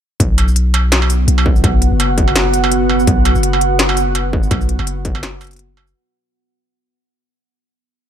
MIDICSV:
0, 0, Header, 1, 5, 480
1, 0, Start_track
1, 0, Tempo, 359281
1, 270, Time_signature, 4, 2, 24, 8
1, 10815, End_track
2, 0, Start_track
2, 0, Title_t, "Ambient pad"
2, 0, Program_c, 0, 92
2, 270, Note_on_c, 0, 78, 95
2, 271, Note_on_c, 0, 59, 85
2, 271, Note_on_c, 0, 66, 74
2, 7896, Note_off_c, 0, 78, 0
2, 7897, Note_off_c, 0, 59, 0
2, 7897, Note_off_c, 0, 66, 0
2, 10815, End_track
3, 0, Start_track
3, 0, Title_t, "808-style bass"
3, 0, Program_c, 1, 38
3, 267, Note_on_c, 1, 35, 101
3, 1695, Note_off_c, 1, 35, 0
3, 1707, Note_on_c, 1, 35, 96
3, 2174, Note_off_c, 1, 35, 0
3, 2188, Note_on_c, 1, 35, 105
3, 2546, Note_off_c, 1, 35, 0
3, 2564, Note_on_c, 1, 30, 83
3, 4096, Note_off_c, 1, 30, 0
3, 4107, Note_on_c, 1, 35, 106
3, 4466, Note_off_c, 1, 35, 0
3, 4483, Note_on_c, 1, 30, 82
3, 6015, Note_off_c, 1, 30, 0
3, 6027, Note_on_c, 1, 35, 101
3, 6386, Note_off_c, 1, 35, 0
3, 6403, Note_on_c, 1, 30, 84
3, 7935, Note_off_c, 1, 30, 0
3, 10815, End_track
4, 0, Start_track
4, 0, Title_t, "Struck metal"
4, 507, Note_on_c, 9, 77, 54
4, 641, Note_off_c, 9, 77, 0
4, 988, Note_on_c, 9, 77, 82
4, 1122, Note_off_c, 9, 77, 0
4, 1364, Note_on_c, 9, 77, 58
4, 1497, Note_off_c, 9, 77, 0
4, 1843, Note_on_c, 9, 77, 81
4, 1976, Note_off_c, 9, 77, 0
4, 2189, Note_on_c, 9, 77, 55
4, 2322, Note_off_c, 9, 77, 0
4, 2668, Note_on_c, 9, 77, 79
4, 2802, Note_off_c, 9, 77, 0
4, 3041, Note_on_c, 9, 77, 52
4, 3175, Note_off_c, 9, 77, 0
4, 3523, Note_on_c, 9, 77, 82
4, 3656, Note_off_c, 9, 77, 0
4, 3868, Note_on_c, 9, 77, 54
4, 4001, Note_off_c, 9, 77, 0
4, 4346, Note_on_c, 9, 77, 80
4, 4480, Note_off_c, 9, 77, 0
4, 4721, Note_on_c, 9, 77, 49
4, 4854, Note_off_c, 9, 77, 0
4, 5197, Note_on_c, 9, 77, 83
4, 5331, Note_off_c, 9, 77, 0
4, 5545, Note_on_c, 9, 77, 50
4, 5678, Note_off_c, 9, 77, 0
4, 6025, Note_on_c, 9, 77, 77
4, 6159, Note_off_c, 9, 77, 0
4, 6400, Note_on_c, 9, 77, 50
4, 6534, Note_off_c, 9, 77, 0
4, 6879, Note_on_c, 9, 77, 68
4, 7013, Note_off_c, 9, 77, 0
4, 7227, Note_on_c, 9, 77, 50
4, 7360, Note_off_c, 9, 77, 0
4, 7710, Note_on_c, 9, 77, 76
4, 7844, Note_off_c, 9, 77, 0
4, 10815, End_track
5, 0, Start_track
5, 0, Title_t, "Drums"
5, 267, Note_on_c, 9, 36, 117
5, 269, Note_on_c, 9, 42, 86
5, 401, Note_off_c, 9, 36, 0
5, 403, Note_off_c, 9, 42, 0
5, 507, Note_on_c, 9, 42, 66
5, 641, Note_off_c, 9, 42, 0
5, 643, Note_on_c, 9, 82, 36
5, 748, Note_on_c, 9, 42, 80
5, 776, Note_off_c, 9, 82, 0
5, 882, Note_off_c, 9, 42, 0
5, 988, Note_on_c, 9, 42, 67
5, 1122, Note_off_c, 9, 42, 0
5, 1228, Note_on_c, 9, 38, 123
5, 1228, Note_on_c, 9, 42, 83
5, 1362, Note_off_c, 9, 38, 0
5, 1362, Note_off_c, 9, 42, 0
5, 1468, Note_on_c, 9, 42, 61
5, 1468, Note_on_c, 9, 82, 64
5, 1601, Note_off_c, 9, 42, 0
5, 1601, Note_off_c, 9, 82, 0
5, 1709, Note_on_c, 9, 42, 83
5, 1842, Note_off_c, 9, 42, 0
5, 1948, Note_on_c, 9, 36, 106
5, 2081, Note_off_c, 9, 36, 0
5, 2084, Note_on_c, 9, 82, 36
5, 2188, Note_on_c, 9, 36, 125
5, 2189, Note_on_c, 9, 42, 82
5, 2217, Note_off_c, 9, 82, 0
5, 2322, Note_off_c, 9, 36, 0
5, 2322, Note_off_c, 9, 42, 0
5, 2428, Note_on_c, 9, 42, 67
5, 2562, Note_off_c, 9, 42, 0
5, 2668, Note_on_c, 9, 42, 81
5, 2802, Note_off_c, 9, 42, 0
5, 2907, Note_on_c, 9, 42, 69
5, 2908, Note_on_c, 9, 36, 105
5, 3041, Note_off_c, 9, 36, 0
5, 3041, Note_off_c, 9, 42, 0
5, 3147, Note_on_c, 9, 38, 123
5, 3147, Note_on_c, 9, 42, 86
5, 3280, Note_off_c, 9, 38, 0
5, 3280, Note_off_c, 9, 42, 0
5, 3387, Note_on_c, 9, 42, 64
5, 3387, Note_on_c, 9, 82, 60
5, 3521, Note_off_c, 9, 42, 0
5, 3521, Note_off_c, 9, 82, 0
5, 3628, Note_on_c, 9, 42, 82
5, 3761, Note_off_c, 9, 42, 0
5, 4002, Note_on_c, 9, 82, 35
5, 4107, Note_on_c, 9, 42, 80
5, 4108, Note_on_c, 9, 36, 127
5, 4136, Note_off_c, 9, 82, 0
5, 4240, Note_off_c, 9, 42, 0
5, 4242, Note_off_c, 9, 36, 0
5, 4346, Note_on_c, 9, 42, 70
5, 4480, Note_off_c, 9, 42, 0
5, 4481, Note_on_c, 9, 82, 34
5, 4586, Note_on_c, 9, 42, 81
5, 4615, Note_off_c, 9, 82, 0
5, 4719, Note_off_c, 9, 42, 0
5, 4827, Note_on_c, 9, 42, 70
5, 4960, Note_off_c, 9, 42, 0
5, 5065, Note_on_c, 9, 38, 127
5, 5065, Note_on_c, 9, 42, 81
5, 5198, Note_off_c, 9, 38, 0
5, 5198, Note_off_c, 9, 42, 0
5, 5303, Note_on_c, 9, 42, 63
5, 5303, Note_on_c, 9, 82, 61
5, 5436, Note_off_c, 9, 42, 0
5, 5436, Note_off_c, 9, 82, 0
5, 5545, Note_on_c, 9, 42, 80
5, 5678, Note_off_c, 9, 42, 0
5, 5787, Note_on_c, 9, 36, 107
5, 5920, Note_on_c, 9, 82, 36
5, 5921, Note_off_c, 9, 36, 0
5, 6025, Note_on_c, 9, 42, 82
5, 6028, Note_on_c, 9, 36, 127
5, 6054, Note_off_c, 9, 82, 0
5, 6159, Note_off_c, 9, 42, 0
5, 6161, Note_off_c, 9, 36, 0
5, 6162, Note_on_c, 9, 82, 36
5, 6265, Note_on_c, 9, 42, 67
5, 6296, Note_off_c, 9, 82, 0
5, 6399, Note_off_c, 9, 42, 0
5, 6507, Note_on_c, 9, 42, 81
5, 6640, Note_off_c, 9, 42, 0
5, 6746, Note_on_c, 9, 42, 67
5, 6748, Note_on_c, 9, 36, 112
5, 6880, Note_off_c, 9, 42, 0
5, 6881, Note_off_c, 9, 36, 0
5, 6986, Note_on_c, 9, 38, 119
5, 6986, Note_on_c, 9, 42, 76
5, 7119, Note_off_c, 9, 38, 0
5, 7119, Note_off_c, 9, 42, 0
5, 7227, Note_on_c, 9, 42, 28
5, 7227, Note_on_c, 9, 82, 62
5, 7272, Note_off_c, 9, 42, 0
5, 7272, Note_on_c, 9, 42, 31
5, 7306, Note_off_c, 9, 42, 0
5, 7306, Note_on_c, 9, 42, 36
5, 7360, Note_off_c, 9, 82, 0
5, 7362, Note_off_c, 9, 42, 0
5, 7362, Note_on_c, 9, 42, 41
5, 7389, Note_off_c, 9, 42, 0
5, 7389, Note_on_c, 9, 42, 49
5, 7434, Note_off_c, 9, 42, 0
5, 7434, Note_on_c, 9, 42, 52
5, 7470, Note_off_c, 9, 42, 0
5, 7470, Note_on_c, 9, 42, 75
5, 7604, Note_off_c, 9, 42, 0
5, 7845, Note_on_c, 9, 82, 36
5, 7978, Note_off_c, 9, 82, 0
5, 10815, End_track
0, 0, End_of_file